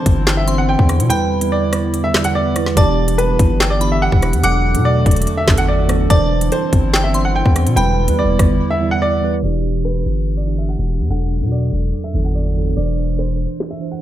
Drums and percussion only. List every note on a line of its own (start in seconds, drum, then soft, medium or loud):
0.06 kick loud
0.06 closed hi-hat loud
0.27 snare loud
0.27 clap loud
0.48 closed hi-hat medium
0.79 kick loud
0.89 cross-stick medium
0.89 closed hi-hat medium
1.00 closed hi-hat medium
1.10 closed hi-hat loud
1.41 closed hi-hat medium
1.73 cross-stick loud
1.73 closed hi-hat medium
1.94 closed hi-hat medium
2.14 snare loud
2.14 clap medium
2.24 closed hi-hat medium
2.56 cross-stick medium
2.56 closed hi-hat medium
2.66 snare medium
2.77 kick loud
2.77 closed hi-hat loud
3.08 closed hi-hat medium
3.19 closed hi-hat medium
3.39 kick loud
3.39 closed hi-hat loud
3.60 snare loud
3.60 clap loud
3.81 closed hi-hat medium
4.12 kick loud
4.22 cross-stick medium
4.22 closed hi-hat medium
4.33 closed hi-hat medium
4.44 closed hi-hat loud
4.75 closed hi-hat medium
5.06 kick loud
5.06 closed hi-hat medium
5.11 closed hi-hat medium
5.16 closed hi-hat medium
5.22 closed hi-hat medium
5.27 closed hi-hat medium
5.48 kick loud
5.48 snare loud
5.48 clap medium
5.58 closed hi-hat medium
5.89 cross-stick loud
5.89 closed hi-hat medium
6.10 kick loud
6.10 closed hi-hat loud
6.41 closed hi-hat medium
6.52 closed hi-hat medium
6.73 kick loud
6.73 closed hi-hat medium
6.94 snare loud
6.94 clap loud
7.14 closed hi-hat medium
7.46 kick loud
7.56 cross-stick medium
7.56 closed hi-hat medium
7.67 closed hi-hat medium
7.77 closed hi-hat medium
8.08 closed hi-hat medium
8.39 kick loud
8.39 cross-stick loud
8.39 closed hi-hat medium
9.75 closed hi-hat medium
9.85 closed hi-hat medium
10.06 closed hi-hat medium
10.48 closed hi-hat medium
10.89 closed hi-hat medium
11.00 closed hi-hat medium
11.10 closed hi-hat medium
11.41 closed hi-hat medium
11.73 closed hi-hat medium
11.78 closed hi-hat medium
11.83 closed hi-hat medium
11.88 closed hi-hat medium
11.94 closed hi-hat medium
12.24 closed hi-hat medium
12.56 closed hi-hat medium
12.77 closed hi-hat medium
13.08 closed hi-hat medium
13.19 closed hi-hat medium
13.39 closed hi-hat medium
13.60 snare loud
13.60 clap loud
13.81 closed hi-hat medium